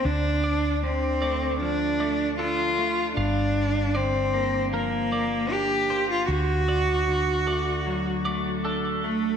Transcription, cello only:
X:1
M:4/4
L:1/16
Q:1/4=77
K:Dphr
V:1 name="Cello"
D4 C4 D4 F4 | D4 C4 B,4 G3 F | ^F12 z2 A,2 |]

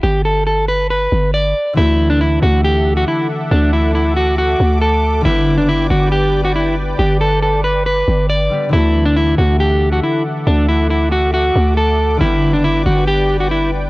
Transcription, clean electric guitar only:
X:1
M:4/4
L:1/16
Q:1/4=138
K:D
V:1 name="Clean electric guitar"
G2 A2 A2 B2 B4 d4 | E3 D E2 F2 G3 F E2 z2 | D2 E2 E2 F2 F4 A4 | E3 D E2 F2 G3 F E2 z2 |
G2 A2 A2 B2 B4 d4 | E3 D E2 F2 G3 F E2 z2 | D2 E2 E2 F2 F4 A4 | E3 D E2 F2 G3 F E2 z2 |]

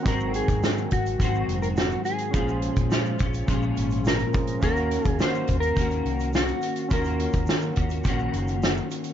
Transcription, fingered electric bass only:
X:1
M:4/4
L:1/16
Q:1/4=105
K:Ebdor
V:1 name="Fingered electric bass" clef=bass
A,,,3 A,,, A,,2 A,,,2 A,,,2 F,,,4 z2 | B,,,3 B,,, B,,2 B,,,2 B,,,2 A,,,4 z2 | E,,3 E,, E,2 E,,2 E,,2 C,,4 z2 | E,,3 E,, E,2 E,,2 B,,,2 G,,,4 z2 |]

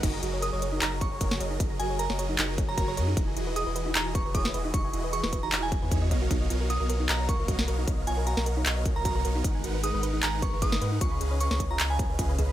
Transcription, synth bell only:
X:1
M:4/4
L:1/16
Q:"Swing 16ths" 1/4=153
K:F#
V:1 name="Synth bell"
z4 d' z3 a z c' z4 z | z2 g z a z6 a a a z2 | z4 d' z3 a z c' z d'4 | c' z3 c' c' z a a g4 z3 |
z4 d' z3 a z c' z4 z | z2 g z a z6 a a a z2 | z4 d' z3 a z c' z d'4 | c' z3 c' c' z a a g4 z3 |]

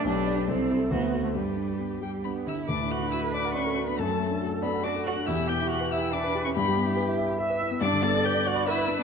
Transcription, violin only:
X:1
M:3/4
L:1/16
Q:1/4=140
K:G
V:1 name="Violin"
B4 c4 c4 | B6 g2 b2 e'2 | [K:D] d'2 f'2 e'2 d'2 c'3 b | a4 z2 b2 d'2 f'2 |
e'2 g'2 f'2 e'2 d'3 c' | b4 z8 | [K:G] d'2 a'2 g'2 f'2 e'3 z |]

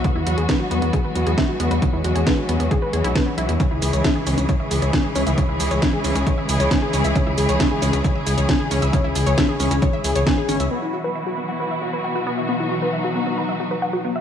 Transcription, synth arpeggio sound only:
X:1
M:4/4
L:1/16
Q:1/4=135
K:C#m
V:1 name="Synth arpeggio sound"
B, E F G B F B, B, G B F G e F B, B | B, E F G B F B, B, G B G E B, B, E E | C E G c e G C C c e G c g G C e | C E G c e G C C c e G c g G C e |
C E G c e G C C c e G c g G C e | C E G c e G C C c e G c g G C e | B, E F B e F B, B, B e F B f F B, e | B, E F B e F B, B, B e F B f F B, e |]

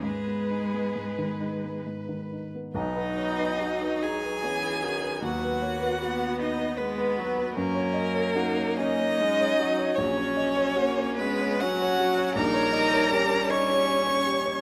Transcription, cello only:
X:1
M:3/4
L:1/8
Q:1/4=76
K:G#m
V:1 name="Cello"
G,4 z2 | [K:B] D3 G3 | F3 D B,2 | A,3 D3 |
C3 B, F2 | [K:D#phr] A3 c3 |]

